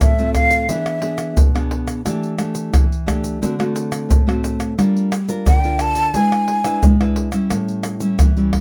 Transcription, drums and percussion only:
0.01 pandeiro, tamborim, shaker, surdo
0.19 pandeiro, shaker
0.35 pandeiro, tamborim, shaker, surdo
0.51 pandeiro, shaker
0.69 pandeiro, shaker, surdo
0.86 pandeiro, tamborim, shaker
1.02 pandeiro
1.18 pandeiro, tamborim, shaker
1.37 pandeiro, shaker, surdo
1.56 pandeiro, tamborim, shaker
1.71 pandeiro
1.88 pandeiro, tamborim, shaker
2.06 pandeiro, tamborim, shaker, surdo
2.23 pandeiro, shaker
2.39 pandeiro, tamborim, shaker
2.55 pandeiro, shaker
2.74 pandeiro, tamborim, shaker, surdo
2.92 pandeiro, shaker
3.08 pandeiro, tamborim, shaker, surdo
3.24 pandeiro, shaker
3.43 pandeiro, shaker, surdo
3.60 pandeiro, tamborim, shaker
3.76 pandeiro, shaker
3.92 pandeiro, tamborim, shaker
4.11 pandeiro, shaker, surdo
4.29 pandeiro, tamborim, shaker
4.44 pandeiro, shaker
4.60 pandeiro, tamborim, shaker
4.79 pandeiro, tamborim, shaker, surdo
4.97 pandeiro, shaker
5.12 pandeiro, tamborim, shaker
5.29 pandeiro, shaker
5.46 pandeiro, tamborim, shaker, surdo
5.64 pandeiro, shaker
5.79 pandeiro, tamborim, shaker
5.95 pandeiro, shaker
6.14 pandeiro, shaker, surdo
6.32 pandeiro, tamborim, shaker
6.48 pandeiro
6.64 pandeiro, tamborim, shaker
6.83 pandeiro, shaker, surdo
7.01 pandeiro, tamborim, shaker
7.16 pandeiro
7.32 pandeiro, tamborim, shaker
7.50 pandeiro, tamborim, shaker, surdo
7.68 pandeiro, shaker
7.83 pandeiro, tamborim, shaker
8.00 pandeiro, shaker
8.19 pandeiro, tamborim, shaker, surdo
8.37 pandeiro, shaker
8.53 pandeiro, tamborim, surdo

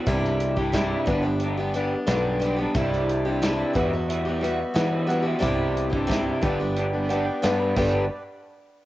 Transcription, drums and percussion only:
0.07 kick, closed hi-hat
0.25 snare
0.40 closed hi-hat
0.57 kick
0.74 kick, snare, closed hi-hat
1.07 kick, closed hi-hat
1.40 closed hi-hat
1.74 closed hi-hat
2.07 snare, closed hi-hat
2.42 closed hi-hat
2.75 kick, closed hi-hat
2.93 snare
3.09 closed hi-hat
3.42 snare, closed hi-hat
3.75 kick, closed hi-hat
4.10 closed hi-hat
4.44 closed hi-hat
4.75 snare, closed hi-hat
5.10 closed hi-hat
5.43 kick, closed hi-hat
5.77 closed hi-hat
5.93 kick
6.10 kick, snare, closed hi-hat
6.42 kick, closed hi-hat
6.76 closed hi-hat
7.10 closed hi-hat
7.43 snare, closed hi-hat
7.76 kick, crash

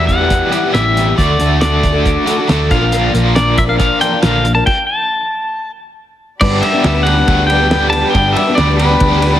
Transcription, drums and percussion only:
0.09 kick, closed hi-hat
0.30 kick, closed hi-hat
0.52 closed hi-hat
0.75 snare, closed hi-hat
0.97 closed hi-hat
1.18 kick, closed hi-hat
1.40 closed hi-hat
1.61 snare, closed hi-hat
1.83 kick, closed hi-hat
2.06 kick, closed hi-hat
2.27 closed hi-hat
2.49 snare, closed hi-hat
2.71 kick, closed hi-hat
2.92 closed hi-hat
3.15 closed hi-hat
3.36 snare, closed hi-hat
3.58 kick, closed hi-hat
3.80 kick, closed hi-hat
4.01 closed hi-hat
4.23 snare, closed hi-hat
4.45 closed hi-hat
4.67 kick, crash
6.41 kick, crash
6.63 ride
6.84 snare, ride
7.07 ride
7.28 kick, ride
7.50 ride
7.71 snare, ride
7.93 ride
8.15 kick, ride
8.36 ride
8.58 snare, ride
8.79 ride
9.00 kick, ride
9.12 snare
9.22 ride

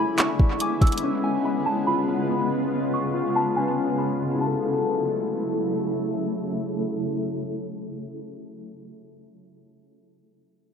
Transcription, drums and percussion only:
0.18 clap, closed hi-hat
0.39 kick
0.60 closed hi-hat
0.81 kick, closed hi-hat
0.87 closed hi-hat
0.92 closed hi-hat
0.98 closed hi-hat

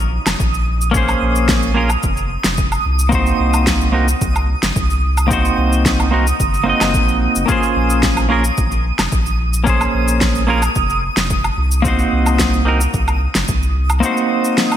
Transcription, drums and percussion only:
0.27 snare, cabasa, low woodblock
0.40 kick, cabasa
0.54 cabasa
0.81 cabasa
0.94 kick, cabasa
1.09 cabasa, low woodblock
1.36 cabasa
1.49 kick, snare, cabasa
1.63 cabasa
1.90 cabasa, low woodblock
2.03 kick, cabasa
2.17 cabasa
2.44 snare, cabasa
2.57 kick, cabasa
2.72 cabasa, low woodblock
2.99 cabasa
3.12 kick, cabasa
3.26 cabasa
3.54 cabasa, low woodblock
3.67 kick, snare, cabasa
3.81 cabasa
4.08 cabasa
4.21 kick, cabasa
4.36 cabasa, low woodblock
4.63 snare, cabasa
4.76 kick, cabasa
4.90 cabasa
5.17 cabasa, low woodblock
5.31 kick, cabasa
5.45 cabasa
5.72 cabasa
5.85 kick, snare, cabasa
6.00 cabasa, low woodblock
6.27 cabasa
6.40 kick, cabasa
6.54 cabasa
6.81 snare, cabasa, low woodblock
6.94 kick, cabasa
7.08 cabasa
7.36 cabasa
7.49 kick, cabasa
7.63 cabasa
7.90 cabasa
8.03 kick, snare, cabasa
8.17 cabasa, low woodblock
8.44 cabasa
8.57 kick, cabasa
8.72 cabasa
8.99 snare, cabasa, low woodblock
9.12 kick, cabasa
9.26 cabasa
9.54 cabasa
9.67 kick, cabasa
9.81 cabasa, low woodblock
10.08 cabasa
10.21 kick, snare, cabasa
10.35 cabasa
10.62 cabasa, low woodblock
10.75 kick, cabasa
10.90 cabasa
11.17 snare, cabasa
11.30 kick, cabasa
11.44 cabasa, low woodblock
11.71 cabasa
11.85 kick, cabasa
11.99 cabasa
12.26 cabasa, low woodblock
12.39 kick, snare, cabasa
12.53 cabasa
12.81 cabasa
12.94 kick, cabasa
13.08 cabasa, low woodblock
13.35 snare, cabasa
13.48 kick, cabasa
13.63 cabasa
13.90 cabasa, low woodblock
14.03 cabasa
14.17 cabasa
14.44 cabasa
14.58 snare, cabasa
14.72 cabasa, low woodblock

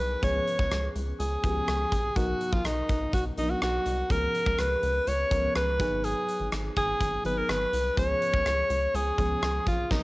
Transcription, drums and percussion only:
0.23 kick, closed hi-hat
0.47 closed hi-hat
0.59 kick
0.71 cross-stick, closed hi-hat
0.96 closed hi-hat
1.20 closed hi-hat
1.44 kick, closed hi-hat
1.68 cross-stick, closed hi-hat
1.92 kick, closed hi-hat
2.16 kick, closed hi-hat
2.41 closed hi-hat
2.53 kick
2.65 cross-stick, closed hi-hat
2.89 kick, closed hi-hat
3.13 kick, closed hi-hat
3.37 closed hi-hat
3.62 cross-stick, closed hi-hat
3.86 closed hi-hat
4.10 kick, closed hi-hat
4.35 closed hi-hat
4.46 kick
4.58 cross-stick, closed hi-hat
4.83 closed hi-hat
5.07 closed hi-hat
5.31 kick, closed hi-hat
5.55 cross-stick, closed hi-hat
5.80 kick, closed hi-hat
6.04 closed hi-hat
6.28 closed hi-hat
6.52 cross-stick, closed hi-hat
6.76 kick, closed hi-hat
7.01 kick, closed hi-hat
7.25 closed hi-hat
7.49 cross-stick, closed hi-hat
7.73 closed hi-hat
7.97 kick, closed hi-hat
8.22 closed hi-hat
8.34 kick
8.46 cross-stick, closed hi-hat
8.70 closed hi-hat
8.94 closed hi-hat
9.18 kick, closed hi-hat
9.42 cross-stick, closed hi-hat
9.67 kick, closed hi-hat
9.91 kick, snare

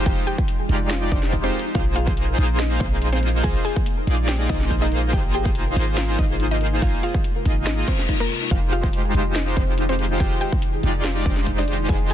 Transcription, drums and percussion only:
0.06 kick, closed hi-hat
0.27 closed hi-hat
0.38 kick
0.48 closed hi-hat
0.69 closed hi-hat
0.90 snare, closed hi-hat
1.12 kick, closed hi-hat
1.23 snare
1.33 kick, closed hi-hat
1.54 closed hi-hat
1.59 closed hi-hat
1.75 kick, closed hi-hat
1.96 closed hi-hat
2.07 kick
2.17 closed hi-hat
2.38 closed hi-hat
2.59 snare, closed hi-hat
2.81 kick, closed hi-hat
3.02 closed hi-hat
3.23 closed hi-hat
3.28 closed hi-hat
3.44 kick, closed hi-hat
3.65 closed hi-hat
3.76 kick
3.86 closed hi-hat
4.07 closed hi-hat
4.29 snare, closed hi-hat
4.50 kick, closed hi-hat
4.61 snare
4.71 kick, closed hi-hat
4.92 closed hi-hat
4.97 closed hi-hat
5.13 kick, closed hi-hat
5.34 closed hi-hat
5.45 kick
5.55 closed hi-hat
5.76 closed hi-hat
5.98 snare, closed hi-hat
6.19 kick, closed hi-hat
6.40 closed hi-hat
6.61 closed hi-hat
6.67 closed hi-hat
6.82 kick, closed hi-hat
7.03 closed hi-hat
7.14 kick
7.24 closed hi-hat
7.45 kick, closed hi-hat
7.67 snare, closed hi-hat
7.88 kick, closed hi-hat
7.99 snare
8.09 kick, closed hi-hat
8.30 closed hi-hat
8.35 closed hi-hat
8.51 kick, closed hi-hat
8.72 closed hi-hat
8.83 kick
8.93 closed hi-hat
9.14 closed hi-hat
9.35 snare, closed hi-hat
9.57 kick, closed hi-hat
9.78 closed hi-hat
9.99 closed hi-hat
10.05 closed hi-hat
10.20 kick, closed hi-hat
10.41 closed hi-hat
10.52 kick
10.62 closed hi-hat
10.83 closed hi-hat
11.04 snare, closed hi-hat
11.26 kick, closed hi-hat
11.37 snare
11.47 kick, closed hi-hat
11.68 closed hi-hat
11.73 closed hi-hat
11.89 kick, closed hi-hat
12.10 closed hi-hat

